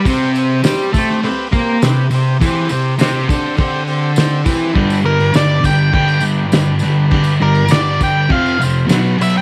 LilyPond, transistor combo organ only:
\new Staff \with { instrumentName = "Transistor combo organ" } { \time 4/4 \key g \mixolydian \tempo 4 = 102 <c' g' c''>8 <c' g' c''>8 <c' g' c''>8 <c' g' c''>8 <c' g' b'>8 <c' g' c''>8 <c' g' b'>8 <c' g' c''>8 | <c' g' c''>8 <c' g' c''>8 <c' g' c''>8 <c' g' c''>8 <c' g' c''>8 <c' g' c''>8 <c' g' c''>8 <c' g' b'>8 | <d' g' b'>8 <d' g' b'>8 <d' g' b'>8 <d' g' b'>8 <d' g' b'>8 <d' g' b'>8 <d' g' b'>8 <d' g' b'>8 | <d' g' b'>8 <d' g' d''>8 <d' g' b'>8 <d' g' b'>8 <c' f' c''>8 <c' f' c''>8 <b fis' b'>8 <b fis' b'>8 | }